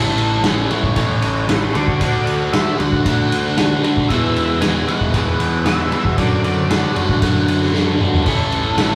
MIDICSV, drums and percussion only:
0, 0, Header, 1, 2, 480
1, 0, Start_track
1, 0, Tempo, 521286
1, 1849, Time_signature, 4, 2, 24, 8
1, 8241, End_track
2, 0, Start_track
2, 0, Title_t, "Drums"
2, 164, Note_on_c, 9, 51, 62
2, 256, Note_off_c, 9, 51, 0
2, 402, Note_on_c, 9, 51, 88
2, 403, Note_on_c, 9, 38, 118
2, 494, Note_off_c, 9, 51, 0
2, 495, Note_off_c, 9, 38, 0
2, 650, Note_on_c, 9, 51, 62
2, 742, Note_off_c, 9, 51, 0
2, 768, Note_on_c, 9, 36, 88
2, 860, Note_off_c, 9, 36, 0
2, 884, Note_on_c, 9, 51, 87
2, 888, Note_on_c, 9, 36, 91
2, 977, Note_off_c, 9, 51, 0
2, 980, Note_off_c, 9, 36, 0
2, 1125, Note_on_c, 9, 51, 74
2, 1218, Note_off_c, 9, 51, 0
2, 1370, Note_on_c, 9, 51, 91
2, 1371, Note_on_c, 9, 38, 96
2, 1462, Note_off_c, 9, 51, 0
2, 1463, Note_off_c, 9, 38, 0
2, 1611, Note_on_c, 9, 51, 65
2, 1703, Note_off_c, 9, 51, 0
2, 1729, Note_on_c, 9, 36, 85
2, 1821, Note_off_c, 9, 36, 0
2, 1848, Note_on_c, 9, 51, 94
2, 1850, Note_on_c, 9, 36, 82
2, 1940, Note_off_c, 9, 51, 0
2, 1942, Note_off_c, 9, 36, 0
2, 2090, Note_on_c, 9, 51, 67
2, 2182, Note_off_c, 9, 51, 0
2, 2333, Note_on_c, 9, 51, 95
2, 2334, Note_on_c, 9, 38, 106
2, 2425, Note_off_c, 9, 51, 0
2, 2426, Note_off_c, 9, 38, 0
2, 2576, Note_on_c, 9, 51, 61
2, 2668, Note_off_c, 9, 51, 0
2, 2692, Note_on_c, 9, 36, 84
2, 2784, Note_off_c, 9, 36, 0
2, 2814, Note_on_c, 9, 36, 95
2, 2815, Note_on_c, 9, 51, 100
2, 2906, Note_off_c, 9, 36, 0
2, 2907, Note_off_c, 9, 51, 0
2, 3058, Note_on_c, 9, 51, 82
2, 3150, Note_off_c, 9, 51, 0
2, 3292, Note_on_c, 9, 51, 88
2, 3293, Note_on_c, 9, 38, 107
2, 3384, Note_off_c, 9, 51, 0
2, 3385, Note_off_c, 9, 38, 0
2, 3539, Note_on_c, 9, 51, 63
2, 3631, Note_off_c, 9, 51, 0
2, 3655, Note_on_c, 9, 36, 80
2, 3747, Note_off_c, 9, 36, 0
2, 3775, Note_on_c, 9, 36, 92
2, 3777, Note_on_c, 9, 51, 88
2, 3867, Note_off_c, 9, 36, 0
2, 3869, Note_off_c, 9, 51, 0
2, 4019, Note_on_c, 9, 51, 61
2, 4111, Note_off_c, 9, 51, 0
2, 4251, Note_on_c, 9, 51, 94
2, 4252, Note_on_c, 9, 38, 109
2, 4343, Note_off_c, 9, 51, 0
2, 4344, Note_off_c, 9, 38, 0
2, 4496, Note_on_c, 9, 51, 66
2, 4589, Note_off_c, 9, 51, 0
2, 4613, Note_on_c, 9, 36, 80
2, 4705, Note_off_c, 9, 36, 0
2, 4731, Note_on_c, 9, 51, 85
2, 4732, Note_on_c, 9, 36, 81
2, 4823, Note_off_c, 9, 51, 0
2, 4824, Note_off_c, 9, 36, 0
2, 4971, Note_on_c, 9, 51, 68
2, 5063, Note_off_c, 9, 51, 0
2, 5208, Note_on_c, 9, 51, 86
2, 5209, Note_on_c, 9, 38, 92
2, 5300, Note_off_c, 9, 51, 0
2, 5301, Note_off_c, 9, 38, 0
2, 5451, Note_on_c, 9, 51, 59
2, 5543, Note_off_c, 9, 51, 0
2, 5570, Note_on_c, 9, 36, 89
2, 5662, Note_off_c, 9, 36, 0
2, 5689, Note_on_c, 9, 51, 76
2, 5690, Note_on_c, 9, 36, 88
2, 5781, Note_off_c, 9, 51, 0
2, 5782, Note_off_c, 9, 36, 0
2, 5932, Note_on_c, 9, 51, 63
2, 6024, Note_off_c, 9, 51, 0
2, 6174, Note_on_c, 9, 51, 90
2, 6175, Note_on_c, 9, 38, 109
2, 6266, Note_off_c, 9, 51, 0
2, 6267, Note_off_c, 9, 38, 0
2, 6410, Note_on_c, 9, 51, 67
2, 6502, Note_off_c, 9, 51, 0
2, 6529, Note_on_c, 9, 36, 84
2, 6621, Note_off_c, 9, 36, 0
2, 6648, Note_on_c, 9, 51, 94
2, 6650, Note_on_c, 9, 36, 86
2, 6740, Note_off_c, 9, 51, 0
2, 6742, Note_off_c, 9, 36, 0
2, 6890, Note_on_c, 9, 51, 76
2, 6982, Note_off_c, 9, 51, 0
2, 7013, Note_on_c, 9, 38, 31
2, 7105, Note_off_c, 9, 38, 0
2, 7130, Note_on_c, 9, 38, 58
2, 7222, Note_off_c, 9, 38, 0
2, 7365, Note_on_c, 9, 45, 78
2, 7458, Note_off_c, 9, 45, 0
2, 7486, Note_on_c, 9, 43, 81
2, 7579, Note_off_c, 9, 43, 0
2, 7605, Note_on_c, 9, 49, 85
2, 7608, Note_on_c, 9, 36, 97
2, 7698, Note_off_c, 9, 49, 0
2, 7700, Note_off_c, 9, 36, 0
2, 7847, Note_on_c, 9, 51, 64
2, 7939, Note_off_c, 9, 51, 0
2, 8082, Note_on_c, 9, 51, 90
2, 8083, Note_on_c, 9, 38, 106
2, 8174, Note_off_c, 9, 51, 0
2, 8175, Note_off_c, 9, 38, 0
2, 8241, End_track
0, 0, End_of_file